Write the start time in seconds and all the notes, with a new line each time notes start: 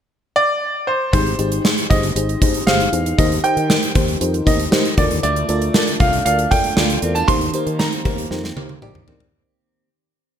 0.36 D5
0.87 C5
1.13 G#1 G#2 D#4 G4 G#4 C5, kick, closed hi-hat
1.26 closed hi-hat
1.39 G#1 D#4 G4 G#4 C5, closed hi-hat
1.52 closed hi-hat
1.64 D#4 G4 G#4 C5, snare
1.78 closed hi-hat
1.90 G1 D#4 G4 G#4 C5 D#5, kick, closed hi-hat
2.03 closed hi-hat
2.16 G#1 D#4 G4 G#4 C5, closed hi-hat
2.29 closed hi-hat
2.41 D#4 G4 G#4 C5, kick, closed hi-hat
2.54 closed hi-hat
2.67 G1 D#4 G4 G#4 C5 F5, snare
2.80 closed hi-hat
2.93 E2 D#4 G4 G#4 C5, closed hi-hat
3.06 closed hi-hat
3.18 D#2 D#3 D#4 G4 A#4 C5 D#5, kick, closed hi-hat
3.32 closed hi-hat
3.44 D#4 G4 A#4 C5 G5, closed hi-hat
3.57 D#3, closed hi-hat
3.70 D#4 G4 A#4 C5, snare
3.83 closed hi-hat
3.95 D#2 D#4 G4 A#4 C5, kick, closed hi-hat
4.08 closed hi-hat
4.20 F2 D#4 G4 A#4 C5, closed hi-hat
4.34 closed hi-hat
4.46 D#2 D#4 G4 A#4 C5 D#5, kick, closed hi-hat
4.59 closed hi-hat
4.71 D#3 D#4 G4 A#4 C5, snare
4.85 closed hi-hat
4.97 D2 D3 F4 A4 A#4 D5, kick, closed hi-hat
5.11 D#2, closed hi-hat
5.23 D2 A3 D5, closed hi-hat
5.36 closed hi-hat
5.48 D2 A3 F4 A4 A#4 D5, closed hi-hat
5.62 closed hi-hat
5.74 D4 F4 A4 A#4 D5, snare
5.87 closed hi-hat
6.00 C2 A3 F4 A4 A#4 F5, kick, closed hi-hat
6.13 closed hi-hat
6.25 D2 D4 F4 A4 A#4 D5 F5, closed hi-hat
6.39 closed hi-hat
6.51 A3 F4 A4 A#4 D5 G5, kick, closed hi-hat
6.64 closed hi-hat
6.77 D2 F4 A4 A#4 D5, snare
6.90 closed hi-hat
7.02 E2 C4 F4 A4 A#4 D5, closed hi-hat
7.15 D4 A5, closed hi-hat
7.28 D#2 D#3 D#4 G4 A#4 C5 C6, kick, closed hi-hat
7.41 closed hi-hat
7.53 A#3 D#4 G4 A#4 C5, closed hi-hat
7.67 D#3, closed hi-hat
7.79 C4 D#4 G4 A#4 C5 A#5, snare
7.93 closed hi-hat
8.05 D#2 A#3 D#4 G4 A#4 C5, kick, closed hi-hat
8.18 closed hi-hat
8.30 F2 C4 D#4 G4 A#4 C5, snare
8.44 snare
8.56 D#2 A#3 D#4 G4 A#4 C5, high tom
8.69 high tom
8.82 A#1 D#4 G4 A#4 D5, mid tom
8.95 mid tom
9.07 E2 C4 D#4 G4 A#4 C5, floor tom
9.20 floor tom